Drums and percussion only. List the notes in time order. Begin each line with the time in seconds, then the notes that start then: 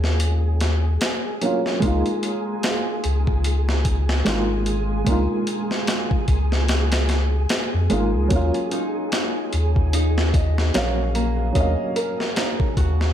0.04 snare
0.20 closed hi-hat
0.61 snare, closed hi-hat
1.01 snare, closed hi-hat
1.42 closed hi-hat
1.66 snare
1.82 kick, closed hi-hat
2.06 closed hi-hat
2.23 closed hi-hat
2.63 snare, closed hi-hat
3.04 closed hi-hat
3.27 kick
3.44 closed hi-hat
3.69 snare
3.85 kick, closed hi-hat
4.09 snare
4.26 snare, closed hi-hat
4.66 closed hi-hat
5.07 kick, closed hi-hat
5.47 closed hi-hat
5.71 snare
5.87 snare, closed hi-hat
6.11 kick
6.28 kick, closed hi-hat
6.52 snare
6.68 snare, closed hi-hat
6.92 snare, closed hi-hat
7.09 snare, closed hi-hat
7.49 snare, closed hi-hat
7.90 closed hi-hat
8.30 kick, closed hi-hat
8.54 closed hi-hat
8.71 closed hi-hat
9.12 snare, closed hi-hat
9.53 closed hi-hat
9.76 kick
9.93 closed hi-hat
10.18 snare
10.34 kick, closed hi-hat
10.58 snare
10.74 snare, closed hi-hat
11.15 closed hi-hat
11.55 kick, closed hi-hat
11.96 closed hi-hat
12.20 snare
12.36 snare, closed hi-hat
12.60 kick
12.77 kick, closed hi-hat
13.01 snare